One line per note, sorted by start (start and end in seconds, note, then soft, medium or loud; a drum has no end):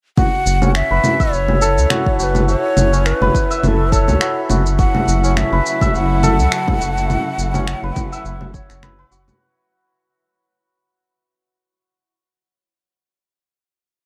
0.17 9.42 E4 medium
0.17 1.90 F#4 medium
0.17 9.42 E5 medium
0.17 0.71 F#5 loud
0.17 kick loud
0.17 low conga medium
0.17 shaker soft
0.46 0.82 F#1 loud
0.46 shaker medium
0.62 2.92 C#4 medium
0.62 low conga medium
0.62 shaker soft
0.75 1.34 E5 loud
0.75 finger snap medium
0.75 shaker soft
0.91 1.00 F#1 medium
0.91 3.21 B4 medium
1.04 low conga medium
1.04 shaker medium
1.20 3.49 E5 medium
1.20 kick medium
1.20 shaker soft
1.32 1.79 F#1 medium
1.32 2.20 C#5 loud
1.32 shaker soft
1.48 low conga medium
1.62 3.92 A4 medium
1.62 shaker medium
1.77 1.86 C#2 medium
1.77 shaker soft
1.90 2.19 F#4 medium
1.90 finger snap loud
1.90 low conga medium
1.90 shaker soft
2.06 kick loud
2.19 2.55 F#1 medium
2.19 2.48 F#4 medium
2.19 2.24 C#5 medium
2.19 shaker medium
2.23 2.48 B4 medium
2.35 low conga medium
2.35 shaker soft
2.48 4.21 F#4 medium
2.48 3.07 C#5 loud
2.48 shaker soft
2.77 3.13 F#1 loud
2.77 low conga medium
2.77 shaker medium
2.93 5.23 C#4 medium
2.93 shaker soft
3.06 3.63 B4 medium
3.06 finger snap loud
3.06 shaker soft
3.21 3.30 F#1 medium
3.21 5.52 B4 loud
3.21 low conga medium
3.35 kick loud
3.35 shaker medium
3.50 5.80 E5 loud
3.50 shaker soft
3.63 4.09 F#1 medium
3.63 3.68 B4 medium
3.63 low conga medium
3.63 shaker soft
3.67 3.94 A4 medium
3.92 6.23 A4 medium
3.92 4.52 C#5 medium
3.92 kick loud
3.92 shaker medium
4.08 4.17 C#2 medium
4.08 low conga medium
4.08 shaker soft
4.21 4.49 F#4 medium
4.21 finger snap loud
4.21 shaker soft
4.50 4.86 F#1 medium
4.50 4.78 F#4 medium
4.50 low conga medium
4.50 shaker medium
4.66 shaker soft
4.79 9.37 C#3 medium
4.79 9.37 F#3 medium
4.79 9.36 A3 medium
4.79 9.37 E4 medium
4.79 6.52 F#4 medium
4.79 5.30 F#5 loud
4.79 kick loud
4.79 shaker soft
4.95 low conga medium
5.07 5.44 F#1 medium
5.07 shaker medium
5.24 7.54 C#4 medium
5.24 shaker soft
5.30 5.38 F#5 medium
5.37 5.96 E5 loud
5.37 finger snap loud
5.37 low conga medium
5.37 shaker soft
5.52 5.61 F#1 medium
5.52 7.83 B4 medium
5.66 shaker medium
5.81 8.11 E5 loud
5.81 kick loud
5.81 low conga medium
5.81 shaker soft
5.94 6.40 F#1 medium
5.94 8.83 F#5 loud
5.94 shaker soft
6.23 9.16 A4 loud
6.23 low conga medium
6.23 shaker medium
6.39 6.47 C#2 medium
6.39 shaker soft
6.52 6.81 F#4 medium
6.52 finger snap loud
6.52 shaker soft
6.68 kick loud
6.68 low conga medium
6.81 7.17 F#1 medium
6.81 7.09 F#4 medium
6.81 shaker medium
6.98 shaker soft
7.10 9.11 F#4 medium
7.10 low conga medium
7.10 shaker soft
7.38 7.74 F#1 medium
7.38 shaker medium
7.54 11.41 C#4 medium
7.54 low conga medium
7.54 shaker soft
7.67 finger snap medium
7.67 shaker soft
7.83 7.92 F#1 medium
7.83 8.83 B4 medium
7.96 kick loud
7.96 low conga medium
7.96 shaker medium
8.12 10.42 E5 medium
8.12 shaker soft
8.25 8.61 F#1 loud
8.25 shaker soft
8.41 low conga medium
8.54 11.09 C#5 medium
8.54 kick loud
8.54 shaker medium
8.70 9.04 F#1 medium
8.70 finger snap soft
8.70 shaker soft
8.83 8.98 B4 medium
8.83 finger snap loud
8.83 low conga medium
8.83 shaker soft
8.99 11.72 B4 loud
9.11 9.31 F#1 medium
9.11 12.36 F#4 loud
9.11 shaker medium
9.28 low conga medium
9.28 shaker soft